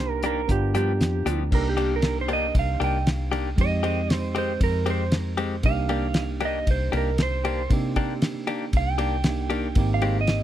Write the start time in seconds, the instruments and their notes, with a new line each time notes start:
Already playing: fingered electric bass C2, tine electric piano A#3 D4 D#4 G4, electric slide guitar C5
0.11 electric slide guitar A#4
0.23 clean electric guitar D#3 A#3 D4 G4, electric slide guitar A#4, closed hi-hat
0.48 fingered electric bass G1, tine electric piano B3 D4 F4 G4, electric slide guitar G4, kick, closed hi-hat
0.75 fingered electric bass G2, clean electric guitar F3 B3 D4 G4, electric slide guitar G4, closed hi-hat
1.00 fingered electric bass F2, snare, closed hi-hat
1.26 fingered electric bass D2, clean electric guitar F3 B3 D4 G4, closed hi-hat
1.51 fingered electric bass C2, tine electric piano A#3 D4 D#4 G4, electric slide guitar A#4, kick, crash
1.69 electric slide guitar G4
1.77 clean electric guitar D#3 A#3 D4 G4, ride
1.96 electric slide guitar A#4
2.02 snare, ride
2.21 electric slide guitar C5
2.28 clean electric guitar D#3 A#3 D4 G4, ride
2.33 electric slide guitar D#5
2.55 fingered electric bass C2, kick, ride
2.59 electric slide guitar F5
2.80 fingered electric bass C2, clean electric guitar D#3 A#3 D4 G4, electric slide guitar G5, ride
3.07 snare, ride
3.32 clean electric guitar D#3 A#3 D4 G4, ride
3.56 fingered electric bass F2, tine electric piano G#3 C4 D#4 G4, kick, ride
3.61 electric slide guitar D#5
3.83 clean electric guitar D#3 G#3 C4 G4, ride
4.10 electric slide guitar C5, snare, ride
4.35 clean electric guitar D#3 G#3 C4 G4, electric slide guitar C5, ride
4.61 fingered electric bass F2, electric slide guitar A#4, kick, ride
4.86 clean electric guitar D#3 G#3 C4 G4, ride
4.90 electric slide guitar C5
5.12 snare, ride
5.37 clean electric guitar D#3 G#3 C4 G4, ride
5.63 fingered electric bass C2, tine electric piano A#3 D4 D#4 G4, electric slide guitar F5, kick, ride
5.89 clean electric guitar D#3 A#3 D4 G4, ride
6.14 snare, ride
6.40 clean electric guitar D#3 A#3 D4 G4, ride
6.45 electric slide guitar D#5
6.67 fingered electric bass C2, electric slide guitar C5, kick, ride
6.92 fingered electric bass C2, clean electric guitar D#3 A#3 D4 G4, ride
6.97 electric slide guitar A#4
7.18 snare, ride
7.23 electric slide guitar C5
7.45 clean electric guitar D#3 A#3 D4 G4, ride
7.70 fingered electric bass C3, tine electric piano A#3 D4 D#4 G4, kick, ride
7.96 clean electric guitar D#3 A#3 D4 G4, kick, ride
8.22 snare, ride
8.47 clean electric guitar D#3 A#3 D4 G4, ride
8.73 fingered electric bass C2, electric slide guitar F5, kick, ride
8.91 electric slide guitar G5
8.98 clean electric guitar D#3 A#3 D4 G4, ride
9.24 tine electric piano A#3 D4 D#4 G4, snare, ride
9.50 clean electric guitar D#3 A#3 D4 G4, ride
9.75 fingered electric bass G#1, tine electric piano A#3 C4 D#4 G4, kick, ride
9.94 electric slide guitar F5
10.02 clean electric guitar D#3 G#3 C4 G4, ride
10.21 electric slide guitar D#5
10.27 snare, ride